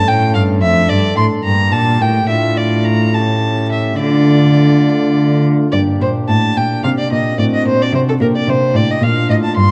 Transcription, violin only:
0.08 0.34 G5 medium
0.35 0.43 F5 medium
0.62 0.90 E5 medium
0.89 1.16 D5 medium
1.16 1.24 C6 medium
1.44 1.74 A#5 medium
1.72 2.03 A5 medium
2.01 2.28 G5 medium
2.29 2.59 E5 medium
2.57 2.86 D5 medium
2.85 3.15 A#5 medium
3.14 3.70 A5 medium
3.72 3.99 E5 medium
4.00 5.41 D5 medium
5.72 5.80 D5 medium
6.01 6.09 C5 medium
6.29 6.58 A5 medium
6.57 6.83 G5 medium
6.84 6.89 F5 medium
6.99 7.12 D5 medium
7.12 7.38 D#5 medium
7.39 7.44 D5 medium
7.54 7.67 D#5 medium
7.68 7.84 C5 medium
7.82 7.94 D5 medium
7.95 8.00 C5 medium
8.09 8.14 A4 medium
8.21 8.26 A#4 medium
8.36 8.51 D5 medium
8.49 8.78 C5 medium
8.76 8.92 D5 medium
8.91 9.05 D#5 medium
9.03 9.29 F5 medium
9.30 9.35 D#5 medium
9.44 9.56 A5 medium
9.57 9.71 C6 medium

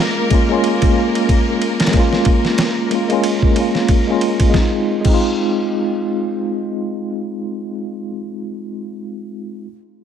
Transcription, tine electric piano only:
0.00 0.26 G#3 medium
0.00 0.27 A#3 medium
0.00 0.29 C#4 medium
0.00 0.30 F4 medium
0.30 0.44 G#3 medium
0.30 0.45 A#3 medium
0.30 0.46 C#4 medium
0.34 0.47 F4 medium
0.49 0.64 G#3 medium
0.49 0.64 A#3 medium
0.49 0.65 C#4 medium
0.53 0.66 F4 medium
1.91 2.87 G#3 medium
1.91 2.88 A#3 medium
1.97 2.90 C#4 medium
1.97 2.91 F4 medium
2.91 3.05 G#3 medium
2.91 3.06 A#3 medium
2.91 3.07 C#4 medium
2.95 3.07 F4 medium
3.09 3.24 G#3 medium
3.09 3.25 A#3 medium
3.09 3.26 C#4 medium
3.13 3.26 F4 medium
3.56 4.03 G#3 medium
3.56 4.04 A#3 medium
3.56 4.04 C#4 medium
3.60 4.05 F4 medium
4.07 4.48 G#3 medium
4.07 4.52 A#3 medium
4.07 4.52 C#4 medium
4.12 4.53 F4 medium
4.49 4.72 G#3 medium
4.54 4.74 C4 medium
4.58 4.76 D#4 medium
4.62 4.79 F4 medium
5.01 8.03 G#3 medium
5.05 8.07 C4 medium
5.09 8.11 D#4 medium
5.14 8.16 F4 medium

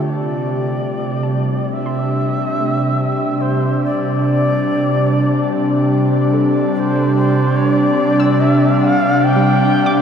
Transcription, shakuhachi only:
0.02 0.14 C#5 medium
0.14 1.74 D5 medium
1.72 3.42 E5 loud
3.40 3.83 C5 medium
3.85 6.29 D5 medium
6.74 6.80 D5 medium
6.79 7.13 C5 medium
7.16 7.58 C5 medium
7.56 7.69 C#5 medium
7.69 8.42 D5 medium
8.40 8.83 E5 medium
8.82 9.25 F5 medium
8.82 8.87 G5 medium
9.24 10.02 G5 loud

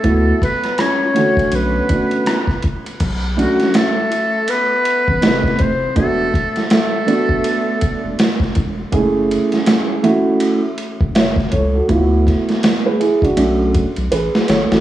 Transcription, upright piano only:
0.03 0.32 A3 medium
0.03 0.32 B3 medium
0.03 0.33 E4 medium
0.03 0.33 F#4 medium
1.14 2.21 D3 medium
1.14 1.87 A3 medium
1.14 1.88 C#4 medium
1.14 1.89 F#4 medium
1.88 2.35 A3 medium
1.88 2.35 C#4 soft
1.88 2.36 D4 soft
1.88 2.36 F#4 medium
3.37 3.83 A3 medium
3.37 3.84 C#4 medium
3.37 3.84 D4 medium
3.37 3.84 F#4 medium
5.21 5.69 C3 medium
5.21 5.68 A3 medium
5.21 5.69 D#4 medium
5.21 5.69 G4 medium
5.95 6.24 A3 medium
5.95 6.25 B3 medium
5.95 6.25 D4 medium
5.95 6.25 F#4 medium
7.06 8.13 A3 medium
7.06 8.13 B3 medium
7.06 8.13 D4 medium
7.06 8.13 F#4 medium
8.92 9.00 G#3 medium
8.92 9.98 C#4 medium
8.92 9.98 E4 medium
8.92 9.99 G#4 medium
8.98 10.01 A3 medium
10.03 10.59 A3 loud
10.03 10.59 C#4 medium
10.03 10.59 E4 medium
10.03 10.60 F#4 loud
11.15 11.51 C#5 medium
11.15 11.50 E5 medium
11.52 11.73 A4 medium
11.52 11.74 C#5 medium
11.74 11.95 F#4 medium
11.74 12.10 A4 medium
11.88 12.94 A3 medium
11.88 12.95 B3 medium
11.88 12.64 E4 medium
11.88 11.98 F4 medium
11.96 12.67 F#4 medium
12.86 12.99 G#4 medium
12.86 13.00 B4 medium
13.00 13.22 E4 medium
13.00 13.22 G#4 medium
13.23 13.36 D4 medium
13.23 13.37 F#4 medium
13.36 13.83 A3 medium
13.36 13.83 C#4 medium
13.36 13.84 D4 medium
13.36 13.84 F#4 medium
14.12 14.47 G#4 medium
14.12 14.47 B4 medium
14.48 14.70 A4 medium
14.48 14.70 C#5 medium
14.71 14.80 F#4 soft
14.71 14.80 A4 medium

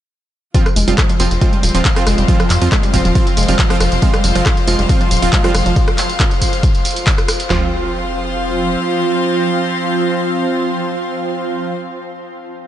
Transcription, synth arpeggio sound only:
0.54 0.63 F3 medium
0.76 0.82 G#3 medium
0.88 0.96 G3 medium
0.98 1.01 F3 medium
1.09 1.15 F3 loud
1.20 1.28 F3 medium
1.41 1.47 G#3 medium
1.53 1.61 G3 medium
1.63 1.67 F3 medium
1.74 1.80 F3 loud
1.85 1.94 F3 medium
2.07 2.12 G#3 medium
2.18 2.26 G3 medium
2.28 2.32 F3 medium
2.40 2.45 F3 loud
2.50 2.59 F3 medium
2.72 2.78 G#3 medium
2.83 2.91 G3 medium
2.93 2.97 F3 medium
3.05 3.10 F3 loud
3.15 3.24 F3 medium
3.37 3.43 G#3 medium
3.48 3.56 G3 medium
3.59 3.62 F3 medium
3.70 3.75 F3 loud
3.80 3.89 F3 medium
4.02 4.08 G#3 medium
4.14 4.22 G3 medium
4.24 4.27 F3 medium
4.35 4.41 F3 loud
4.46 4.54 F3 medium
4.67 4.73 G#3 medium
4.79 4.87 G3 medium
4.89 4.93 F3 medium
5.01 5.06 F3 loud
5.11 5.20 F3 medium
5.33 5.39 G#3 medium
5.44 5.52 G3 medium
5.55 5.58 F3 medium
5.66 5.71 F3 loud
7.50 7.70 F3 loud

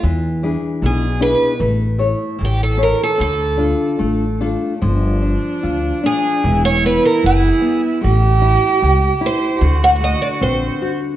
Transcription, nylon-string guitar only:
0.03 0.80 E3 medium
0.43 1.05 D4 soft
0.43 1.06 E4 soft
0.43 1.06 G#4 soft
0.83 1.59 B2 medium
1.20 1.52 D4 soft
1.20 1.52 E4 soft
1.20 1.52 G#4 soft
1.59 2.37 A3 medium
1.98 2.63 E4 soft
1.98 2.63 A4 soft
1.98 2.63 C#5 medium
2.38 3.16 E3 medium
2.77 3.10 E4 soft
2.77 3.10 A4 soft
2.77 3.10 C#5 soft
3.18 3.97 D3 medium
3.57 4.24 D4 soft
3.57 4.24 F4 soft
3.57 4.24 A4 soft
3.99 4.79 A3 medium
4.40 4.74 D4 soft
4.40 4.74 F4 soft
4.40 4.74 A4 soft
4.82 6.40 F3 medium
5.22 5.62 D4 soft
5.63 6.02 F4 soft
6.03 6.43 D4 medium
6.44 7.21 E3 medium
6.84 7.22 B3 medium
7.22 7.61 E3 soft
7.61 8.01 B3 medium
8.01 9.56 A3 medium
8.42 8.81 E4 soft
8.82 9.21 G4 soft
9.21 9.60 E4 medium
9.62 11.16 D3 medium
10.00 10.40 A3 medium
10.41 10.81 C4 soft
10.82 11.16 F#4 medium

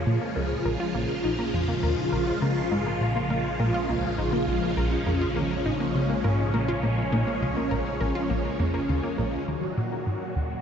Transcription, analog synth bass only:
0.07 0.19 A#2 medium
0.36 0.56 C#2 medium
0.65 0.77 A#1 medium
0.95 1.07 A#1 loud
1.24 1.44 A#1 medium
1.54 1.73 F2 medium
1.83 1.95 D#2 medium
2.12 2.32 A#1 medium
2.42 2.62 C#3 medium
2.71 2.99 G#2 loud
3.01 3.20 A#2 medium
3.30 3.50 A#2 medium
3.59 3.71 A#2 loud
3.89 4.09 C#2 medium
4.18 4.30 A#1 medium
4.48 4.60 A#1 loud
4.77 4.97 A#1 loud
5.06 5.26 F2 medium
5.36 5.48 D#2 medium
5.65 5.85 A#1 medium
5.95 6.15 C#3 medium
6.24 6.52 G#2 medium
6.54 6.74 A#2 medium
6.83 7.03 A#2 medium
7.12 7.24 A#2 loud
7.42 7.62 C#2 medium
7.71 7.83 A#1 medium
8.01 8.13 A#1 loud
8.30 8.50 A#1 medium
8.60 8.79 F2 medium
8.89 9.01 D#2 medium
9.18 9.38 A#1 medium
9.48 9.68 D#2 loud
9.77 9.97 A#2 medium
10.06 10.18 G#2 medium
10.36 10.56 D#2 medium

